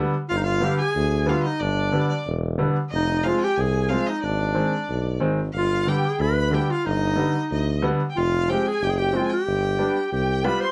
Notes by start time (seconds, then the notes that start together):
Already playing: D3 G3 B3
0.29 G1 F4 F5
0.37 D#4
0.43 F4 F5
0.61 D3 G3 B3 G4
0.78 G#4 G#5
0.95 D2
1.26 D3 G3 B3 F5
1.31 F4
1.43 D#4 D#5
1.59 G1 D4 D5
1.92 D3 G3 B3
2.09 D5
2.26 E1
2.58 D3 G3 B3
2.90 F1 D#5
2.95 D#4
3.23 F3 G#3 C4 F5
3.28 F4
3.37 G5 G#5
3.44 G4
3.56 C2 G#5
3.60 G#4
3.89 F3 G#3 C4 F4 F5
4.06 D#4 D#5
4.23 G#1 D4 D5
4.54 D#3 G#3 C4
4.89 B1
5.20 G#1 D#3 G#3 C4
5.53 G1 F5
5.57 F4
5.86 D3 G3 B3 G4 G5
6.05 G#4
6.20 D2 B4 B5
6.51 D3 G3 B3 G4 G5
6.70 F4 F5
6.86 G1 D#4 D#5
7.16 D3 G3 B3
7.51 D2 D#5
7.82 D3 G3 B3
8.10 G5
8.16 F1 F4 F5
8.48 F3 G#3 C4 G4 G5
8.66 G#4 G#5
8.81 F#1 G4 G5
8.89 G#4
8.97 G4 G5
9.12 F3 G#3 C4 F4
9.25 G5 G#5
9.33 G4
9.47 G1
9.78 G3 B3 D4
10.12 C2 G4 G5
10.44 G3 B3 F4 B4 B5
10.60 C5 C6